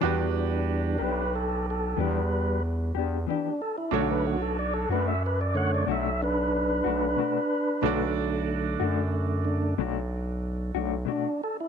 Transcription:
<<
  \new Staff \with { instrumentName = "Tonewheel organ" } { \time 12/8 \key b \minor \tempo 4. = 62 r4. <ais' b'>8 a'8 a'8 <g b'>4 r4 d'8 a'16 e'16 | fis'16 b'16 fis'16 a'16 d''16 a'16 b'16 e''16 b'16 d''16 fis''16 d''16 e''8 <d' b'>2~ <d' b'>8~ | <d' b'>8 r1 r8 d'8 a'16 e'16 | }
  \new Staff \with { instrumentName = "Tonewheel organ" } { \time 12/8 \key b \minor <e g d'>4. r1 r8 | <d a>8 r2 <d a cis''>8 r2. | <d a>2~ <d a>8 <d a d'>8 r2. | }
  \new Staff \with { instrumentName = "Upright piano" } { \time 12/8 \key b \minor <d' fis' g' b'>1. | <d' fis' a' cis''>1. | <d' fis' a' d''>1. | }
  \new Staff \with { instrumentName = "Clean electric guitar" } { \time 12/8 \key b \minor <e b d' g'>8 r4 <b d' g'>8 r4 <e b d' g'>8 r4 <b d' g'>8 <e b d' g'>8 r8 | <b, a d' fis'>8 r4 <a d' fis'>8 r4 <b, a d' fis'>8 r4 <a d' fis'>8 <b, a d' fis'>8 r8 | <b, a d' fis'>8 r4 <a d' fis'>8 r4 <b, a d' fis'>8 r4 <a d' fis'>8 <b, a d' fis'>8 r8 | }
  \new Staff \with { instrumentName = "FM bass" } { \clef bass \time 12/8 \key b \minor e,4. b,,4. e,4. e,8 r4 | b,,4. fis,4. b,,4. b,,8 r4 | b,,4. fis,4. b,,4. b,,8 r4 | }
>>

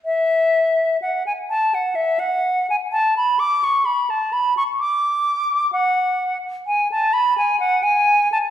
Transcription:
\new Staff \with { instrumentName = "Flute" } { \time 3/4 \key fis \minor \tempo 4 = 64 e''4 fis''16 gis''16 a''16 fis''16 e''16 fis''8 gis''16 | a''16 b''16 d'''16 cis'''16 b''16 a''16 b''16 cis'''16 d'''4 | fis''8. r16 gis''16 a''16 b''16 gis''16 fis''16 gis''8 a''16 | }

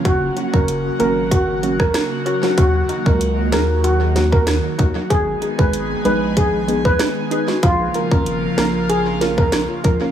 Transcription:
<<
  \new Staff \with { instrumentName = "Steel pan" } { \time 4/4 \key ees \minor \tempo 4 = 95 ges'16 r8 bes'16 r8 bes'16 r16 ges'16 r8 bes'16 r4 | ges'16 r8 bes'16 r8 bes'16 r16 ges'16 r8 bes'16 r4 | aes'16 r8 ces''16 r8 ces''16 r16 aes'16 r8 ces''16 r4 | f'16 r8 bes'16 r8 bes'16 r16 aes'16 r8 bes'16 r4 | }
  \new Staff \with { instrumentName = "Synth pluck" } { \time 4/4 \key ees \minor r8 <des' ges'>16 <ges bes des' ges'>16 r8 <ges bes des' ges'>16 r8. <ges bes des' ges'>16 r8. <des' ges'>16 <ges bes des' ges'>16 | r8 <ees' ges'>16 <ges bes ees' ges'>16 r8 <ges bes ees' aes'>16 r8. <ges bes ees' ges'>16 r8. <ees' ges'>16 <ges bes ees' ges'>16 | r8 <ees' aes'>16 <aes ces' ees' aes'>16 r8 <aes ces' ees' aes'>16 r8. <aes ces' ees' aes'>16 r8. <ees' aes'>16 <aes ces' ees' ges'>16 | r8 <f' bes'>16 <bes des' f' bes'>16 r8 <bes des' f' bes'>16 r8. <bes des' f' bes'>16 r8. <f' bes'>16 <bes des' f' bes'>16 | }
  \new Staff \with { instrumentName = "Analog synth pad" } { \clef bass \time 4/4 \key ees \minor << { <ges bes ges'>1~ | <ges bes ges'>1 | <aes ces' aes'>1 | <f bes f'>1 | } \\ { des1 | ees1 | ees1 | des1 | } >> }
  \new Staff \with { instrumentName = "Sub bass" } { \clef bass \time 4/4 \key ees \minor ges,,8 r16 ges,,8. aes,,4. r4 | ees,8 r16 des,8. ees,4.~ ees,16 r16 ees,16 r16 | aes,,8 r16 aes,,8. bes,,4. r4 | bes,,8 r16 aes,,8. bes,,4.~ bes,,16 r16 bes,,16 r16 | }
  \new DrumStaff \with { instrumentName = "Drums" } \drummode { \time 4/4 <hh bd>8 hh16 bd16 hh8 hh8 <hh bd>8 hh16 <bd ss>16 <hh ss sn>8 hh16 sn16 | <hh bd>8 hh16 bd16 hh8 <hh ss sn>8 hh8 <hh sn>16 bd16 <hh ss sn>8 <hh bd>8 | <hh bd>8 hh16 bd16 hh8 hh8 <hh bd>8 hh16 bd16 <hh ss sn>8 hh16 sn16 | <hh bd>8 hh16 bd16 hh8 <hh ss sn>8 hh8 <hh sn>16 bd16 <hh ss sn>8 <hh bd>8 | }
>>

